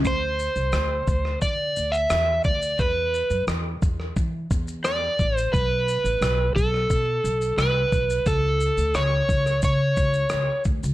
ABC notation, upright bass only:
X:1
M:4/4
L:1/16
Q:1/4=88
K:Clyd
V:1 name="Upright bass" clef=bass
D,,3 C,, D,,2 D,,2 D,2 D,,2 E,,2 D,,2 | E,,3 F,, E,,2 E,,2 E,2 E,,4 A,,,2 | B,,,3 A,,, B,,,2 B,,,2 B,,2 B,,,2 C,,2 B,,,2 | ^C,,3 D,, C,,2 C,,2 ^C,2 C,,2 C,, z D,, C,, |]